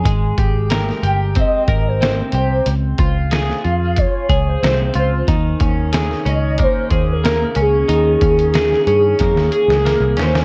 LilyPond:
<<
  \new Staff \with { instrumentName = "Soft synth lead" } { \time 4/4 \key ees \mixolydian \tempo 4 = 92 r4. g''8 ees''8. c''8. c''8 | r4. f''8 des''8. c''8. c''8 | r4. ees''8 c''8. bes'8. aes'8~ | aes'2.~ aes'8 c''8 | }
  \new Staff \with { instrumentName = "Clean electric guitar" } { \time 4/4 \key ees \mixolydian aes8 g'8 bes'8 g'8 c'8 bes'8 c'8 g'8 | r8 f'8 aes'8 f'4 aes'8 c'8 f'8 | ees8 des'8 aes'8 des'8 bes8 aes'8 bes8 des'8 | ees8 des'8 aes'8 des'8 bes8 aes'8 bes8 des'8 | }
  \new Staff \with { instrumentName = "Picked electric bass" } { \clef bass \time 4/4 \key ees \mixolydian aes,,8 aes,,4 g,,8. r16 aes,,4 c,8 | des,8 des,4 f,8. r16 des,8 c,8 des,8 | ees,8 ees,4 des,8. r16 ees,4 des,8 | ees,8 ees,4 g,8 f,16 ees,16 r16 des,8 c,16 ees,8 | }
  \new DrumStaff \with { instrumentName = "Drums" } \drummode { \time 4/4 <hh bd>8 <hh bd>8 <hh sn>16 sn16 hh8 <hh bd>8 <hh bd>8 <hh sn>8 hh8 | hh8 <hh bd>8 <hh sn>16 sn16 hh8 <hh bd>8 <hh bd>8 <hh sn>8 hh8 | <hh bd>8 <hh bd>8 <hh sn>16 sn16 hh8 <hh bd>8 <hh bd>8 <hh sn>8 hh8 | hh8 <hh bd>16 hh16 <hh sn>16 sn16 hh8 <hh bd sn>16 sn16 hh16 sn16 <hh sn>8 <hh sn>16 sn16 | }
>>